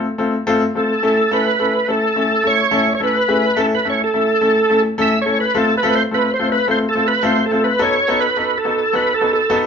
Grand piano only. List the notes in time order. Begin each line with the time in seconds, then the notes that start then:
0.18 A3 C4 F4 A4
0.47 A3 C4 F4 A4
0.75 A3 C4 F4 A4
1.03 A3 C#4 E4 A4
1.31 A3 C#4 E4 A4
1.59 A3 C#4 E4 A4
1.88 A3 C#4 E4 A4
2.16 A3 C#4 E4 A4
2.44 A3 C#4 E4 A4
2.71 A3 C#4 E4 A4
3.00 A3 C#4 E4 A4
3.28 A3 C#4 E4 G#4
3.56 A3 C#4 E4 A4
3.85 A3 C#4 E4 A4
4.14 A3 C#4 E4 A4
4.41 A3 C#4 E4 A4
4.69 A3 C#4 E4 A4
4.98 A3 C#4 E4 A4
5.26 A3 C#4 E4 A4
5.55 A3 C4 F4 A4
5.83 A3 C4 F4 A4
6.11 A3 C4 F4 A4
6.39 A3 C4 F4 A4
6.67 A3 C4 F4 A4
6.95 A3 C4 F4 A4
7.23 A3 C4 F4 A4
7.51 A3 C4 F4 A4
7.79 B3 D#4 F#4 A4
8.08 B3 D#4 F#4 A4
8.37 B3 D#4 F#4 A4
8.65 B3 D#4 F#4 A4
8.93 B3 D#4 F#4 A4
9.21 B3 D#4 F#4 A4
9.50 B3 D#4 F#4 A4